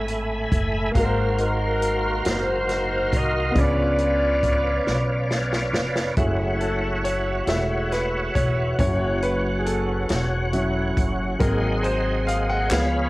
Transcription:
0.00 0.47 G#1 medium
0.00 0.97 A2 medium
0.00 0.88 A3 medium
0.00 0.92 A3 medium
0.00 0.90 E4 medium
0.00 0.91 G#4 medium
0.00 0.92 B4 medium
0.00 0.92 E5 medium
0.00 0.92 G#5 medium
0.00 0.92 B5 medium
0.08 closed hi-hat soft
0.52 0.92 F#1 medium
0.52 kick medium
0.52 closed hi-hat medium
0.91 2.21 G#1 medium
0.91 2.21 G#2 medium
0.91 3.50 A#3 medium
0.91 3.51 F5 medium
0.91 kick medium
0.91 closed hi-hat medium
0.96 1.39 D#4 medium
0.96 3.54 F#4 medium
0.96 3.52 F#4 medium
0.96 1.39 F#4 medium
0.96 3.54 A#4 medium
0.96 1.37 A#4 medium
0.96 1.03 A#4 medium
0.96 6.14 F5 medium
0.96 3.54 C6 medium
1.05 3.57 C5 medium
1.38 2.26 D#4 medium
1.38 2.26 F#4 medium
1.38 2.22 A#4 medium
1.38 closed hi-hat soft
1.82 closed hi-hat medium
2.25 3.08 F#1 medium
2.25 3.53 D#4 medium
2.25 3.53 F#4 medium
2.25 3.14 C5 medium
2.25 snare loud
2.25 closed hi-hat medium
2.69 snare soft
2.69 closed hi-hat soft
3.13 3.53 C2 medium
3.13 3.57 D#5 medium
3.13 kick medium
3.13 closed hi-hat medium
3.51 4.82 C#3 medium
3.51 6.11 B3 medium
3.51 6.12 D4 medium
3.55 4.82 C#2 medium
3.55 6.14 C#4 medium
3.55 6.13 F4 soft
3.55 5.28 F4 medium
3.55 6.16 B4 medium
3.55 6.15 C#5 medium
3.55 6.15 D5 medium
3.55 5.31 D5 medium
3.55 kick medium
3.55 closed hi-hat medium
3.60 5.28 B4 medium
3.98 closed hi-hat soft
4.43 kick medium
4.43 closed hi-hat medium
4.87 5.70 B1 medium
4.87 snare soft
5.31 snare medium
5.53 snare medium
5.73 6.13 F1 medium
5.73 snare medium
5.96 snare medium
6.17 7.44 F#1 medium
6.17 7.47 A3 soft
6.17 7.47 E4 medium
6.17 11.36 F#4 medium
6.17 8.74 G#4 soft
6.17 8.76 C#5 medium
6.17 8.76 E5 soft
6.17 12.67 F#5 soft
6.17 kick medium
6.17 closed hi-hat medium
6.60 7.01 A4 medium
6.60 closed hi-hat soft
7.04 7.14 C#5 medium
7.04 closed hi-hat medium
7.47 8.30 E1 medium
7.47 7.87 G#3 soft
7.47 7.87 A3 soft
7.47 7.88 E4 soft
7.47 7.89 E5 medium
7.47 snare medium
7.47 closed hi-hat medium
7.92 8.36 B4 medium
7.92 snare soft
7.92 closed hi-hat soft
8.35 8.75 E1 medium
8.35 8.78 C#5 medium
8.35 kick medium
8.35 closed hi-hat medium
8.79 10.05 F#1 medium
8.79 10.05 F#3 soft
8.79 10.06 C#4 soft
8.79 10.06 E4 medium
8.79 11.38 C#5 medium
8.79 9.24 C#5 medium
8.79 kick medium
8.79 closed hi-hat medium
9.22 9.56 B4 medium
9.22 closed hi-hat soft
9.59 9.66 G#4 medium
9.66 10.92 A4 medium
9.66 closed hi-hat medium
10.09 10.93 E1 medium
10.09 snare loud
10.09 closed hi-hat medium
10.53 10.92 F#3 soft
10.53 10.92 C#4 soft
10.53 10.93 E4 soft
10.53 closed hi-hat soft
10.97 11.37 F#1 medium
10.97 kick medium
10.97 closed hi-hat medium
11.39 12.67 G#1 loud
11.39 12.66 F#3 medium
11.39 12.67 A#3 soft
11.39 12.67 C4 medium
11.39 12.69 G#4 medium
11.39 11.80 A#4 medium
11.39 12.69 D#5 medium
11.39 12.70 C6 medium
11.39 kick medium
11.39 closed hi-hat medium
11.83 12.24 C5 medium
11.83 closed hi-hat soft
12.27 12.47 F5 medium
12.27 closed hi-hat medium
12.49 12.72 F#5 medium
12.71 13.10 C#2 medium
12.71 13.10 F3 medium
12.71 13.10 G#3 soft
12.71 13.10 B3 medium
12.71 13.10 G#4 medium
12.71 13.10 C#5 medium
12.71 13.10 F5 medium
12.71 13.10 B5 medium
12.71 snare loud
12.71 clap medium
12.71 closed hi-hat medium

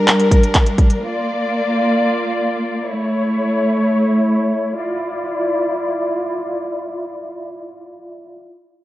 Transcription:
0.00 1.00 G3 medium
0.00 0.98 D4 medium
0.00 1.00 A#4 medium
0.08 clap loud
0.08 closed hi-hat medium
0.20 closed hi-hat medium
0.31 kick medium
0.31 closed hi-hat medium
0.44 closed hi-hat medium
0.54 kick medium
0.54 clap loud
0.54 closed hi-hat medium
0.67 closed hi-hat medium
0.78 kick loud
0.78 closed hi-hat medium
0.90 closed hi-hat medium
1.02 2.87 A#3 medium
1.02 2.87 F4 medium
1.02 2.87 D5 medium
2.89 4.75 A3 medium
2.89 4.75 E4 medium
2.89 4.75 C#5 medium
4.77 8.33 E4 medium
4.77 8.33 F4 medium
4.77 8.33 D5 medium

